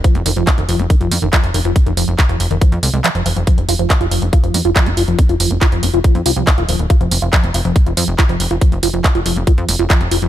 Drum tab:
HH |xxoxxxoxxxoxxxo-|xxoxxxo-xxoxxxox|xxoxxxoxxxo-xxox|xxo-xxo-xxo-xxox|
CP |----x-------x---|----x-------x---|----x-------x---|----x-------x---|
BD |o---o---o---o---|o---o---o-------|o---o---o---o---|o---o---o---o---|

HH |xxoxxxoxxxoxxxox|xxoxxxo-xxoxxxo-|
CP |----x-------x---|----x-------x---|
BD |o---o---o---o---|o---o---o---o---|